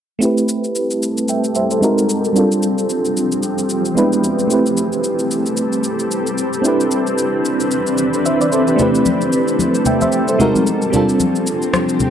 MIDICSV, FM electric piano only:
0, 0, Header, 1, 2, 480
1, 0, Start_track
1, 0, Key_signature, 0, "minor"
1, 0, Tempo, 535714
1, 195, Time_signature, 4, 2, 24, 8
1, 10843, End_track
2, 0, Start_track
2, 0, Title_t, "FM electric piano"
2, 0, Program_c, 0, 5
2, 169, Note_on_c, 0, 57, 70
2, 184, Note_on_c, 0, 60, 62
2, 197, Note_on_c, 0, 64, 62
2, 212, Note_on_c, 0, 67, 65
2, 226, Note_on_c, 0, 71, 77
2, 376, Control_c, 0, 64, 127
2, 1151, Note_off_c, 0, 71, 0
2, 1157, Note_on_c, 0, 79, 61
2, 1163, Note_on_c, 0, 76, 50
2, 1384, Note_off_c, 0, 79, 0
2, 1387, Note_off_c, 0, 76, 0
2, 1397, Note_on_c, 0, 76, 67
2, 1402, Note_on_c, 0, 72, 56
2, 1526, Note_off_c, 0, 72, 0
2, 1528, Note_off_c, 0, 76, 0
2, 1537, Note_on_c, 0, 72, 62
2, 1542, Note_on_c, 0, 69, 52
2, 1593, Note_off_c, 0, 57, 0
2, 1601, Note_off_c, 0, 60, 0
2, 1607, Note_off_c, 0, 64, 0
2, 1615, Note_off_c, 0, 67, 0
2, 1621, Note_on_c, 0, 56, 73
2, 1629, Note_on_c, 0, 60, 70
2, 1636, Note_on_c, 0, 63, 71
2, 1642, Note_on_c, 0, 66, 68
2, 1645, Control_c, 0, 64, 0
2, 1650, Note_on_c, 0, 70, 87
2, 1764, Note_off_c, 0, 72, 0
2, 1766, Note_off_c, 0, 69, 0
2, 1807, Control_c, 0, 64, 127
2, 2086, Note_on_c, 0, 55, 71
2, 2091, Note_off_c, 0, 60, 0
2, 2102, Note_on_c, 0, 60, 65
2, 2108, Note_off_c, 0, 56, 0
2, 2115, Note_off_c, 0, 63, 0
2, 2116, Note_on_c, 0, 62, 65
2, 2119, Note_off_c, 0, 66, 0
2, 2122, Note_off_c, 0, 70, 0
2, 2126, Control_c, 0, 64, 0
2, 2130, Note_on_c, 0, 65, 63
2, 2145, Note_on_c, 0, 69, 76
2, 2300, Control_c, 0, 64, 127
2, 3512, Note_off_c, 0, 55, 0
2, 3519, Note_off_c, 0, 60, 0
2, 3527, Note_off_c, 0, 62, 0
2, 3534, Note_off_c, 0, 65, 0
2, 3541, Note_off_c, 0, 69, 0
2, 3542, Note_on_c, 0, 56, 75
2, 3549, Note_on_c, 0, 59, 71
2, 3555, Note_on_c, 0, 62, 70
2, 3563, Note_on_c, 0, 64, 72
2, 3568, Control_c, 0, 64, 0
2, 3570, Note_on_c, 0, 71, 82
2, 3735, Control_c, 0, 64, 127
2, 4009, Note_on_c, 0, 57, 70
2, 4023, Note_on_c, 0, 60, 64
2, 4026, Note_off_c, 0, 64, 0
2, 4028, Note_off_c, 0, 56, 0
2, 4032, Note_off_c, 0, 59, 0
2, 4035, Note_off_c, 0, 62, 0
2, 4037, Note_on_c, 0, 64, 61
2, 4042, Note_off_c, 0, 71, 0
2, 4045, Control_c, 0, 64, 0
2, 4051, Note_on_c, 0, 67, 63
2, 4066, Note_on_c, 0, 71, 75
2, 4225, Control_c, 0, 64, 127
2, 5906, Note_off_c, 0, 57, 0
2, 5913, Note_off_c, 0, 60, 0
2, 5920, Note_off_c, 0, 64, 0
2, 5927, Note_off_c, 0, 67, 0
2, 5929, Note_on_c, 0, 60, 69
2, 5934, Note_off_c, 0, 71, 0
2, 5943, Note_on_c, 0, 62, 61
2, 5958, Note_on_c, 0, 64, 65
2, 5964, Control_c, 0, 64, 0
2, 5972, Note_on_c, 0, 67, 65
2, 5986, Note_on_c, 0, 71, 74
2, 6145, Control_c, 0, 64, 127
2, 7375, Note_off_c, 0, 67, 0
2, 7382, Note_off_c, 0, 71, 0
2, 7398, Note_on_c, 0, 76, 65
2, 7404, Note_on_c, 0, 72, 57
2, 7529, Note_off_c, 0, 76, 0
2, 7532, Note_off_c, 0, 72, 0
2, 7538, Note_on_c, 0, 74, 68
2, 7542, Note_on_c, 0, 71, 58
2, 7632, Note_off_c, 0, 74, 0
2, 7634, Note_off_c, 0, 71, 0
2, 7637, Note_on_c, 0, 72, 69
2, 7644, Note_on_c, 0, 69, 58
2, 7768, Note_off_c, 0, 72, 0
2, 7772, Note_off_c, 0, 69, 0
2, 7777, Note_on_c, 0, 71, 60
2, 7783, Note_on_c, 0, 67, 50
2, 7826, Note_off_c, 0, 60, 0
2, 7833, Note_off_c, 0, 62, 0
2, 7841, Note_off_c, 0, 64, 0
2, 7850, Note_on_c, 0, 57, 72
2, 7864, Note_on_c, 0, 60, 65
2, 7879, Note_on_c, 0, 64, 63
2, 7882, Note_off_c, 0, 67, 0
2, 7888, Control_c, 0, 64, 0
2, 7893, Note_on_c, 0, 67, 64
2, 7896, Note_off_c, 0, 71, 0
2, 7907, Note_on_c, 0, 71, 78
2, 8055, Control_c, 0, 64, 127
2, 8832, Note_off_c, 0, 71, 0
2, 8838, Note_on_c, 0, 79, 59
2, 8843, Note_on_c, 0, 76, 50
2, 8966, Note_off_c, 0, 76, 0
2, 8969, Note_off_c, 0, 79, 0
2, 8976, Note_on_c, 0, 76, 72
2, 8982, Note_on_c, 0, 72, 62
2, 9203, Note_off_c, 0, 76, 0
2, 9206, Note_off_c, 0, 72, 0
2, 9218, Note_on_c, 0, 72, 65
2, 9224, Note_on_c, 0, 69, 56
2, 9274, Note_off_c, 0, 57, 0
2, 9281, Note_off_c, 0, 60, 0
2, 9288, Note_off_c, 0, 64, 0
2, 9295, Note_off_c, 0, 67, 0
2, 9305, Note_on_c, 0, 56, 75
2, 9311, Note_on_c, 0, 60, 67
2, 9319, Note_on_c, 0, 63, 70
2, 9326, Note_on_c, 0, 66, 71
2, 9328, Control_c, 0, 64, 0
2, 9332, Note_on_c, 0, 70, 83
2, 9444, Note_off_c, 0, 72, 0
2, 9447, Note_off_c, 0, 69, 0
2, 9480, Control_c, 0, 64, 127
2, 9768, Note_on_c, 0, 55, 68
2, 9771, Note_off_c, 0, 60, 0
2, 9782, Note_on_c, 0, 60, 61
2, 9790, Note_off_c, 0, 56, 0
2, 9797, Note_off_c, 0, 63, 0
2, 9797, Note_on_c, 0, 62, 63
2, 9800, Note_off_c, 0, 66, 0
2, 9804, Note_off_c, 0, 70, 0
2, 9808, Control_c, 0, 64, 0
2, 9811, Note_on_c, 0, 65, 63
2, 9826, Note_on_c, 0, 69, 76
2, 9966, Control_c, 0, 64, 127
2, 10843, Note_off_c, 0, 55, 0
2, 10843, Note_off_c, 0, 60, 0
2, 10843, Note_off_c, 0, 62, 0
2, 10843, Note_off_c, 0, 65, 0
2, 10843, Note_off_c, 0, 69, 0
2, 10843, End_track
0, 0, End_of_file